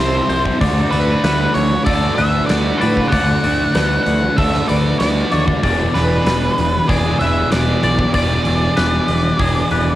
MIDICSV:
0, 0, Header, 1, 7, 480
1, 0, Start_track
1, 0, Tempo, 627615
1, 464, Time_signature, 4, 2, 24, 8
1, 7612, End_track
2, 0, Start_track
2, 0, Title_t, "Lead electric guitar"
2, 0, Program_c, 0, 29
2, 0, Note_on_c, 0, 72, 71
2, 319, Note_off_c, 0, 72, 0
2, 695, Note_on_c, 0, 71, 71
2, 1178, Note_on_c, 0, 73, 76
2, 1194, Note_off_c, 0, 71, 0
2, 1409, Note_off_c, 0, 73, 0
2, 1412, Note_on_c, 0, 74, 81
2, 1643, Note_off_c, 0, 74, 0
2, 1647, Note_on_c, 0, 76, 82
2, 1881, Note_off_c, 0, 76, 0
2, 1884, Note_on_c, 0, 74, 91
2, 2123, Note_on_c, 0, 71, 85
2, 2142, Note_off_c, 0, 74, 0
2, 2357, Note_on_c, 0, 78, 96
2, 2382, Note_off_c, 0, 71, 0
2, 3074, Note_off_c, 0, 78, 0
2, 3084, Note_on_c, 0, 78, 87
2, 3340, Note_on_c, 0, 76, 83
2, 3343, Note_off_c, 0, 78, 0
2, 3577, Note_off_c, 0, 76, 0
2, 3580, Note_on_c, 0, 74, 77
2, 3810, Note_off_c, 0, 74, 0
2, 3819, Note_on_c, 0, 74, 75
2, 4071, Note_off_c, 0, 74, 0
2, 4071, Note_on_c, 0, 73, 75
2, 4158, Note_off_c, 0, 73, 0
2, 4545, Note_on_c, 0, 71, 79
2, 5263, Note_on_c, 0, 74, 92
2, 5289, Note_off_c, 0, 71, 0
2, 5498, Note_off_c, 0, 74, 0
2, 5501, Note_on_c, 0, 76, 90
2, 5746, Note_off_c, 0, 76, 0
2, 5749, Note_on_c, 0, 74, 91
2, 6215, Note_off_c, 0, 74, 0
2, 6224, Note_on_c, 0, 74, 86
2, 7612, Note_off_c, 0, 74, 0
2, 7612, End_track
3, 0, Start_track
3, 0, Title_t, "Clean electric guitar"
3, 0, Program_c, 1, 27
3, 0, Note_on_c, 1, 83, 66
3, 226, Note_on_c, 1, 72, 73
3, 228, Note_off_c, 1, 83, 0
3, 462, Note_off_c, 1, 72, 0
3, 465, Note_on_c, 1, 74, 87
3, 948, Note_on_c, 1, 71, 73
3, 1420, Note_off_c, 1, 71, 0
3, 1423, Note_on_c, 1, 69, 78
3, 1664, Note_off_c, 1, 69, 0
3, 1667, Note_on_c, 1, 71, 70
3, 2146, Note_off_c, 1, 74, 0
3, 2146, Note_on_c, 1, 74, 78
3, 2385, Note_off_c, 1, 74, 0
3, 2388, Note_on_c, 1, 74, 87
3, 2870, Note_off_c, 1, 71, 0
3, 2870, Note_on_c, 1, 71, 77
3, 3350, Note_off_c, 1, 71, 0
3, 3353, Note_on_c, 1, 69, 80
3, 3587, Note_off_c, 1, 69, 0
3, 3590, Note_on_c, 1, 71, 66
3, 4072, Note_off_c, 1, 74, 0
3, 4072, Note_on_c, 1, 74, 78
3, 4307, Note_off_c, 1, 74, 0
3, 4307, Note_on_c, 1, 74, 88
3, 4794, Note_off_c, 1, 71, 0
3, 4794, Note_on_c, 1, 71, 71
3, 5271, Note_off_c, 1, 74, 0
3, 5274, Note_on_c, 1, 68, 81
3, 5511, Note_off_c, 1, 68, 0
3, 5516, Note_off_c, 1, 71, 0
3, 5516, Note_on_c, 1, 71, 64
3, 5994, Note_on_c, 1, 74, 76
3, 6228, Note_off_c, 1, 74, 0
3, 6231, Note_on_c, 1, 74, 83
3, 6701, Note_off_c, 1, 74, 0
3, 6705, Note_off_c, 1, 71, 0
3, 6705, Note_on_c, 1, 71, 74
3, 7182, Note_off_c, 1, 71, 0
3, 7185, Note_on_c, 1, 68, 77
3, 7425, Note_off_c, 1, 68, 0
3, 7430, Note_on_c, 1, 71, 69
3, 7612, Note_off_c, 1, 71, 0
3, 7612, End_track
4, 0, Start_track
4, 0, Title_t, "Overdriven electric guitar"
4, 0, Program_c, 2, 29
4, 0, Note_on_c, 2, 64, 75
4, 214, Note_off_c, 2, 64, 0
4, 223, Note_on_c, 2, 64, 68
4, 449, Note_off_c, 2, 64, 0
4, 481, Note_on_c, 2, 66, 93
4, 698, Note_off_c, 2, 66, 0
4, 701, Note_on_c, 2, 66, 63
4, 1432, Note_off_c, 2, 66, 0
4, 1441, Note_on_c, 2, 66, 92
4, 1910, Note_off_c, 2, 66, 0
4, 1919, Note_on_c, 2, 66, 73
4, 2136, Note_off_c, 2, 66, 0
4, 2145, Note_on_c, 2, 66, 68
4, 2388, Note_off_c, 2, 66, 0
4, 2397, Note_on_c, 2, 66, 88
4, 2617, Note_off_c, 2, 66, 0
4, 2627, Note_on_c, 2, 66, 64
4, 3356, Note_off_c, 2, 66, 0
4, 3365, Note_on_c, 2, 66, 86
4, 3828, Note_off_c, 2, 66, 0
4, 3837, Note_on_c, 2, 66, 77
4, 4060, Note_off_c, 2, 66, 0
4, 4069, Note_on_c, 2, 66, 64
4, 4294, Note_off_c, 2, 66, 0
4, 4313, Note_on_c, 2, 59, 96
4, 4319, Note_on_c, 2, 62, 92
4, 4322, Note_on_c, 2, 68, 84
4, 4544, Note_off_c, 2, 68, 0
4, 4548, Note_on_c, 2, 68, 66
4, 4552, Note_off_c, 2, 62, 0
4, 4555, Note_on_c, 2, 62, 61
4, 4559, Note_off_c, 2, 59, 0
4, 4562, Note_on_c, 2, 59, 51
4, 5264, Note_off_c, 2, 59, 0
4, 5267, Note_on_c, 2, 59, 91
4, 5268, Note_off_c, 2, 62, 0
4, 5268, Note_off_c, 2, 68, 0
4, 5271, Note_on_c, 2, 62, 87
4, 5278, Note_on_c, 2, 68, 99
4, 5746, Note_off_c, 2, 59, 0
4, 5747, Note_off_c, 2, 68, 0
4, 5748, Note_off_c, 2, 62, 0
4, 5749, Note_on_c, 2, 59, 72
4, 5751, Note_on_c, 2, 62, 70
4, 5756, Note_on_c, 2, 68, 68
4, 5970, Note_off_c, 2, 68, 0
4, 5979, Note_on_c, 2, 68, 69
4, 5986, Note_off_c, 2, 62, 0
4, 5990, Note_on_c, 2, 62, 61
4, 5994, Note_off_c, 2, 59, 0
4, 5997, Note_on_c, 2, 59, 58
4, 6215, Note_off_c, 2, 59, 0
4, 6218, Note_off_c, 2, 62, 0
4, 6224, Note_on_c, 2, 59, 82
4, 6227, Note_off_c, 2, 68, 0
4, 6227, Note_on_c, 2, 62, 87
4, 6236, Note_on_c, 2, 68, 92
4, 6447, Note_off_c, 2, 68, 0
4, 6456, Note_on_c, 2, 68, 60
4, 6458, Note_off_c, 2, 62, 0
4, 6464, Note_off_c, 2, 59, 0
4, 6467, Note_on_c, 2, 62, 58
4, 6473, Note_on_c, 2, 59, 53
4, 7181, Note_off_c, 2, 59, 0
4, 7185, Note_off_c, 2, 62, 0
4, 7189, Note_off_c, 2, 68, 0
4, 7190, Note_on_c, 2, 59, 85
4, 7194, Note_on_c, 2, 62, 87
4, 7198, Note_on_c, 2, 68, 86
4, 7612, Note_off_c, 2, 59, 0
4, 7612, Note_off_c, 2, 62, 0
4, 7612, Note_off_c, 2, 68, 0
4, 7612, End_track
5, 0, Start_track
5, 0, Title_t, "Distorted electric guitar"
5, 0, Program_c, 3, 30
5, 0, Note_on_c, 3, 48, 77
5, 0, Note_on_c, 3, 55, 75
5, 1, Note_on_c, 3, 60, 72
5, 215, Note_off_c, 3, 60, 0
5, 224, Note_on_c, 3, 60, 61
5, 231, Note_off_c, 3, 55, 0
5, 240, Note_on_c, 3, 55, 52
5, 449, Note_off_c, 3, 48, 0
5, 450, Note_off_c, 3, 60, 0
5, 458, Note_off_c, 3, 55, 0
5, 464, Note_on_c, 3, 50, 72
5, 475, Note_on_c, 3, 57, 83
5, 482, Note_on_c, 3, 62, 91
5, 708, Note_off_c, 3, 62, 0
5, 711, Note_on_c, 3, 62, 69
5, 725, Note_off_c, 3, 57, 0
5, 728, Note_on_c, 3, 57, 56
5, 949, Note_off_c, 3, 50, 0
5, 952, Note_on_c, 3, 50, 66
5, 960, Note_off_c, 3, 57, 0
5, 963, Note_on_c, 3, 57, 69
5, 966, Note_off_c, 3, 62, 0
5, 969, Note_on_c, 3, 62, 70
5, 1183, Note_off_c, 3, 62, 0
5, 1186, Note_on_c, 3, 62, 63
5, 1203, Note_off_c, 3, 57, 0
5, 1206, Note_on_c, 3, 57, 53
5, 1426, Note_off_c, 3, 50, 0
5, 1429, Note_on_c, 3, 50, 87
5, 1432, Note_off_c, 3, 57, 0
5, 1441, Note_on_c, 3, 57, 88
5, 1445, Note_off_c, 3, 62, 0
5, 1448, Note_on_c, 3, 62, 96
5, 1666, Note_off_c, 3, 62, 0
5, 1669, Note_on_c, 3, 62, 71
5, 1680, Note_off_c, 3, 57, 0
5, 1689, Note_on_c, 3, 57, 50
5, 1898, Note_off_c, 3, 50, 0
5, 1907, Note_on_c, 3, 50, 71
5, 1911, Note_off_c, 3, 57, 0
5, 1920, Note_on_c, 3, 57, 69
5, 1925, Note_off_c, 3, 62, 0
5, 1928, Note_on_c, 3, 62, 77
5, 2152, Note_off_c, 3, 62, 0
5, 2155, Note_on_c, 3, 62, 64
5, 2162, Note_off_c, 3, 57, 0
5, 2171, Note_on_c, 3, 57, 49
5, 2376, Note_off_c, 3, 50, 0
5, 2385, Note_on_c, 3, 50, 84
5, 2386, Note_off_c, 3, 57, 0
5, 2395, Note_on_c, 3, 57, 84
5, 2405, Note_off_c, 3, 62, 0
5, 2408, Note_on_c, 3, 62, 90
5, 2632, Note_off_c, 3, 62, 0
5, 2635, Note_on_c, 3, 62, 68
5, 2643, Note_off_c, 3, 57, 0
5, 2652, Note_on_c, 3, 57, 55
5, 2859, Note_off_c, 3, 50, 0
5, 2868, Note_on_c, 3, 50, 69
5, 2873, Note_off_c, 3, 57, 0
5, 2882, Note_on_c, 3, 57, 78
5, 2885, Note_off_c, 3, 62, 0
5, 2888, Note_on_c, 3, 62, 74
5, 3100, Note_off_c, 3, 62, 0
5, 3103, Note_on_c, 3, 62, 73
5, 3115, Note_off_c, 3, 57, 0
5, 3124, Note_on_c, 3, 57, 58
5, 3336, Note_off_c, 3, 50, 0
5, 3345, Note_off_c, 3, 57, 0
5, 3345, Note_on_c, 3, 50, 92
5, 3355, Note_on_c, 3, 57, 90
5, 3360, Note_off_c, 3, 62, 0
5, 3363, Note_on_c, 3, 62, 96
5, 3578, Note_off_c, 3, 62, 0
5, 3581, Note_on_c, 3, 62, 65
5, 3592, Note_off_c, 3, 57, 0
5, 3601, Note_on_c, 3, 57, 56
5, 3816, Note_off_c, 3, 50, 0
5, 3825, Note_on_c, 3, 50, 72
5, 3826, Note_off_c, 3, 57, 0
5, 3835, Note_on_c, 3, 57, 70
5, 3842, Note_off_c, 3, 62, 0
5, 3845, Note_on_c, 3, 62, 83
5, 4061, Note_off_c, 3, 62, 0
5, 4065, Note_on_c, 3, 62, 65
5, 4075, Note_off_c, 3, 57, 0
5, 4084, Note_on_c, 3, 57, 59
5, 4292, Note_off_c, 3, 50, 0
5, 4301, Note_off_c, 3, 57, 0
5, 4304, Note_on_c, 3, 40, 83
5, 4314, Note_on_c, 3, 47, 93
5, 4325, Note_on_c, 3, 52, 90
5, 4327, Note_off_c, 3, 62, 0
5, 4540, Note_off_c, 3, 52, 0
5, 4543, Note_on_c, 3, 52, 64
5, 4552, Note_off_c, 3, 47, 0
5, 4561, Note_on_c, 3, 47, 54
5, 4771, Note_off_c, 3, 40, 0
5, 4774, Note_on_c, 3, 40, 69
5, 4779, Note_off_c, 3, 47, 0
5, 4788, Note_on_c, 3, 47, 78
5, 4793, Note_off_c, 3, 52, 0
5, 4796, Note_on_c, 3, 52, 72
5, 5012, Note_off_c, 3, 52, 0
5, 5015, Note_on_c, 3, 52, 69
5, 5023, Note_off_c, 3, 47, 0
5, 5032, Note_on_c, 3, 47, 59
5, 5251, Note_off_c, 3, 40, 0
5, 5254, Note_on_c, 3, 40, 79
5, 5256, Note_off_c, 3, 47, 0
5, 5265, Note_off_c, 3, 52, 0
5, 5265, Note_on_c, 3, 47, 85
5, 5274, Note_on_c, 3, 52, 96
5, 5488, Note_off_c, 3, 52, 0
5, 5497, Note_on_c, 3, 52, 70
5, 5506, Note_off_c, 3, 47, 0
5, 5515, Note_on_c, 3, 47, 52
5, 5733, Note_off_c, 3, 40, 0
5, 5742, Note_on_c, 3, 40, 72
5, 5746, Note_off_c, 3, 47, 0
5, 5754, Note_off_c, 3, 52, 0
5, 5755, Note_on_c, 3, 47, 75
5, 5763, Note_on_c, 3, 52, 82
5, 5973, Note_off_c, 3, 52, 0
5, 5982, Note_on_c, 3, 52, 65
5, 5989, Note_off_c, 3, 47, 0
5, 5998, Note_on_c, 3, 47, 55
5, 6213, Note_off_c, 3, 40, 0
5, 6222, Note_on_c, 3, 40, 90
5, 6223, Note_off_c, 3, 47, 0
5, 6229, Note_off_c, 3, 52, 0
5, 6232, Note_on_c, 3, 47, 92
5, 6238, Note_on_c, 3, 52, 97
5, 6451, Note_off_c, 3, 52, 0
5, 6460, Note_on_c, 3, 52, 63
5, 6468, Note_off_c, 3, 47, 0
5, 6477, Note_on_c, 3, 47, 54
5, 6696, Note_off_c, 3, 40, 0
5, 6704, Note_off_c, 3, 47, 0
5, 6705, Note_on_c, 3, 40, 72
5, 6713, Note_off_c, 3, 52, 0
5, 6713, Note_on_c, 3, 47, 69
5, 6722, Note_on_c, 3, 52, 84
5, 6927, Note_off_c, 3, 52, 0
5, 6936, Note_on_c, 3, 52, 66
5, 6941, Note_off_c, 3, 47, 0
5, 6950, Note_on_c, 3, 47, 55
5, 7166, Note_off_c, 3, 40, 0
5, 7175, Note_on_c, 3, 40, 92
5, 7177, Note_off_c, 3, 47, 0
5, 7186, Note_off_c, 3, 52, 0
5, 7186, Note_on_c, 3, 47, 93
5, 7195, Note_on_c, 3, 52, 97
5, 7417, Note_off_c, 3, 52, 0
5, 7426, Note_on_c, 3, 52, 67
5, 7433, Note_off_c, 3, 47, 0
5, 7443, Note_on_c, 3, 47, 50
5, 7612, Note_off_c, 3, 40, 0
5, 7612, Note_off_c, 3, 47, 0
5, 7612, Note_off_c, 3, 52, 0
5, 7612, End_track
6, 0, Start_track
6, 0, Title_t, "Picked electric bass"
6, 0, Program_c, 4, 34
6, 0, Note_on_c, 4, 36, 76
6, 151, Note_off_c, 4, 36, 0
6, 221, Note_on_c, 4, 36, 76
6, 389, Note_off_c, 4, 36, 0
6, 468, Note_on_c, 4, 38, 84
6, 633, Note_off_c, 4, 38, 0
6, 704, Note_on_c, 4, 38, 72
6, 871, Note_off_c, 4, 38, 0
6, 948, Note_on_c, 4, 38, 84
6, 1113, Note_off_c, 4, 38, 0
6, 1188, Note_on_c, 4, 38, 74
6, 1354, Note_off_c, 4, 38, 0
6, 1427, Note_on_c, 4, 38, 85
6, 1593, Note_off_c, 4, 38, 0
6, 1673, Note_on_c, 4, 38, 81
6, 1837, Note_off_c, 4, 38, 0
6, 1910, Note_on_c, 4, 38, 80
6, 2075, Note_off_c, 4, 38, 0
6, 2162, Note_on_c, 4, 45, 76
6, 2323, Note_off_c, 4, 45, 0
6, 2390, Note_on_c, 4, 38, 84
6, 2555, Note_off_c, 4, 38, 0
6, 2633, Note_on_c, 4, 38, 73
6, 2797, Note_off_c, 4, 38, 0
6, 2874, Note_on_c, 4, 38, 76
6, 3038, Note_off_c, 4, 38, 0
6, 3110, Note_on_c, 4, 38, 82
6, 3276, Note_off_c, 4, 38, 0
6, 3350, Note_on_c, 4, 38, 83
6, 3515, Note_off_c, 4, 38, 0
6, 3598, Note_on_c, 4, 38, 83
6, 3761, Note_off_c, 4, 38, 0
6, 3836, Note_on_c, 4, 38, 73
6, 4000, Note_off_c, 4, 38, 0
6, 4076, Note_on_c, 4, 39, 87
6, 4240, Note_off_c, 4, 39, 0
6, 4312, Note_on_c, 4, 28, 88
6, 4477, Note_off_c, 4, 28, 0
6, 4560, Note_on_c, 4, 28, 78
6, 4723, Note_off_c, 4, 28, 0
6, 4792, Note_on_c, 4, 28, 79
6, 4957, Note_off_c, 4, 28, 0
6, 5035, Note_on_c, 4, 28, 79
6, 5199, Note_off_c, 4, 28, 0
6, 5270, Note_on_c, 4, 28, 88
6, 5436, Note_off_c, 4, 28, 0
6, 5513, Note_on_c, 4, 28, 84
6, 5678, Note_off_c, 4, 28, 0
6, 5753, Note_on_c, 4, 28, 75
6, 5918, Note_off_c, 4, 28, 0
6, 5989, Note_on_c, 4, 35, 76
6, 6156, Note_off_c, 4, 35, 0
6, 6228, Note_on_c, 4, 28, 86
6, 6394, Note_off_c, 4, 28, 0
6, 6471, Note_on_c, 4, 28, 74
6, 6637, Note_off_c, 4, 28, 0
6, 6715, Note_on_c, 4, 28, 80
6, 6879, Note_off_c, 4, 28, 0
6, 6952, Note_on_c, 4, 28, 77
6, 7116, Note_off_c, 4, 28, 0
6, 7187, Note_on_c, 4, 28, 83
6, 7353, Note_off_c, 4, 28, 0
6, 7433, Note_on_c, 4, 28, 77
6, 7597, Note_off_c, 4, 28, 0
6, 7612, End_track
7, 0, Start_track
7, 0, Title_t, "Drums"
7, 227, Note_on_c, 9, 46, 44
7, 304, Note_off_c, 9, 46, 0
7, 348, Note_on_c, 9, 36, 68
7, 424, Note_off_c, 9, 36, 0
7, 469, Note_on_c, 9, 36, 86
7, 470, Note_on_c, 9, 46, 66
7, 545, Note_off_c, 9, 36, 0
7, 547, Note_off_c, 9, 46, 0
7, 707, Note_on_c, 9, 46, 42
7, 784, Note_off_c, 9, 46, 0
7, 947, Note_on_c, 9, 46, 58
7, 953, Note_on_c, 9, 38, 94
7, 1024, Note_off_c, 9, 46, 0
7, 1029, Note_off_c, 9, 38, 0
7, 1184, Note_on_c, 9, 46, 50
7, 1261, Note_off_c, 9, 46, 0
7, 1424, Note_on_c, 9, 46, 69
7, 1428, Note_on_c, 9, 36, 104
7, 1501, Note_off_c, 9, 46, 0
7, 1505, Note_off_c, 9, 36, 0
7, 1669, Note_on_c, 9, 46, 45
7, 1745, Note_off_c, 9, 46, 0
7, 1907, Note_on_c, 9, 46, 71
7, 1912, Note_on_c, 9, 38, 102
7, 1983, Note_off_c, 9, 46, 0
7, 1989, Note_off_c, 9, 38, 0
7, 2152, Note_on_c, 9, 46, 48
7, 2228, Note_off_c, 9, 46, 0
7, 2271, Note_on_c, 9, 36, 67
7, 2347, Note_off_c, 9, 36, 0
7, 2387, Note_on_c, 9, 46, 68
7, 2390, Note_on_c, 9, 36, 85
7, 2464, Note_off_c, 9, 46, 0
7, 2467, Note_off_c, 9, 36, 0
7, 2629, Note_on_c, 9, 46, 42
7, 2706, Note_off_c, 9, 46, 0
7, 2867, Note_on_c, 9, 46, 60
7, 2872, Note_on_c, 9, 38, 98
7, 2943, Note_off_c, 9, 46, 0
7, 2949, Note_off_c, 9, 38, 0
7, 3107, Note_on_c, 9, 46, 47
7, 3184, Note_off_c, 9, 46, 0
7, 3348, Note_on_c, 9, 46, 60
7, 3351, Note_on_c, 9, 36, 101
7, 3425, Note_off_c, 9, 46, 0
7, 3428, Note_off_c, 9, 36, 0
7, 3473, Note_on_c, 9, 38, 27
7, 3550, Note_off_c, 9, 38, 0
7, 3586, Note_on_c, 9, 46, 44
7, 3663, Note_off_c, 9, 46, 0
7, 3824, Note_on_c, 9, 46, 62
7, 3830, Note_on_c, 9, 38, 104
7, 3901, Note_off_c, 9, 46, 0
7, 3906, Note_off_c, 9, 38, 0
7, 4067, Note_on_c, 9, 46, 44
7, 4143, Note_off_c, 9, 46, 0
7, 4189, Note_on_c, 9, 36, 74
7, 4266, Note_off_c, 9, 36, 0
7, 4309, Note_on_c, 9, 36, 92
7, 4310, Note_on_c, 9, 46, 60
7, 4386, Note_off_c, 9, 36, 0
7, 4386, Note_off_c, 9, 46, 0
7, 4552, Note_on_c, 9, 46, 46
7, 4558, Note_on_c, 9, 38, 29
7, 4629, Note_off_c, 9, 46, 0
7, 4634, Note_off_c, 9, 38, 0
7, 4791, Note_on_c, 9, 46, 61
7, 4797, Note_on_c, 9, 38, 100
7, 4868, Note_off_c, 9, 46, 0
7, 4873, Note_off_c, 9, 38, 0
7, 5033, Note_on_c, 9, 46, 49
7, 5110, Note_off_c, 9, 46, 0
7, 5271, Note_on_c, 9, 36, 100
7, 5272, Note_on_c, 9, 46, 62
7, 5347, Note_off_c, 9, 36, 0
7, 5348, Note_off_c, 9, 46, 0
7, 5511, Note_on_c, 9, 46, 46
7, 5588, Note_off_c, 9, 46, 0
7, 5749, Note_on_c, 9, 46, 67
7, 5754, Note_on_c, 9, 38, 103
7, 5826, Note_off_c, 9, 46, 0
7, 5831, Note_off_c, 9, 38, 0
7, 5989, Note_on_c, 9, 46, 46
7, 6065, Note_off_c, 9, 46, 0
7, 6108, Note_on_c, 9, 36, 73
7, 6184, Note_off_c, 9, 36, 0
7, 6223, Note_on_c, 9, 46, 68
7, 6226, Note_on_c, 9, 36, 90
7, 6300, Note_off_c, 9, 46, 0
7, 6302, Note_off_c, 9, 36, 0
7, 6462, Note_on_c, 9, 46, 45
7, 6538, Note_off_c, 9, 46, 0
7, 6705, Note_on_c, 9, 46, 64
7, 6711, Note_on_c, 9, 38, 94
7, 6782, Note_off_c, 9, 46, 0
7, 6787, Note_off_c, 9, 38, 0
7, 6945, Note_on_c, 9, 46, 50
7, 7022, Note_off_c, 9, 46, 0
7, 7184, Note_on_c, 9, 46, 61
7, 7185, Note_on_c, 9, 36, 109
7, 7261, Note_off_c, 9, 46, 0
7, 7262, Note_off_c, 9, 36, 0
7, 7425, Note_on_c, 9, 46, 43
7, 7501, Note_off_c, 9, 46, 0
7, 7612, End_track
0, 0, End_of_file